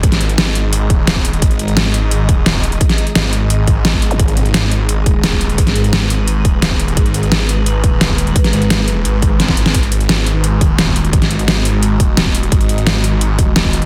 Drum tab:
HH |xxxxx-x-x-x-x-xx|xxxxx-x-x-x-x-xx|xxxxx-x-x-x-x-xx|xxxxx-x-x-x-x-xx|
SD |-o--o-------o---|----o-------o---|-o--o-------o---|----o-------o---|
BD |o---------o--o--|o---------o--o--|o---------o--o--|o---------o--o--|

HH |xxxxx-x-x-x-x-xx|xxxxx-x-x-x-x-xx|xxxxx-x-x-x-x-xx|xxxxx-x-x-x-x-xx|
SD |-o--o-------o---|----o-------o---|-o--o-------oo-o|----o-------o---|
BD |o---------o--o--|o---------o--o--|o---------o--o--|o---------o--o--|

HH |xxxxx-x-x-x-x-xx|xxxxx-x-x-x-x-xx|
SD |-o--o-------o---|----o-------o---|
BD |o---------o--o--|o---------o--o--|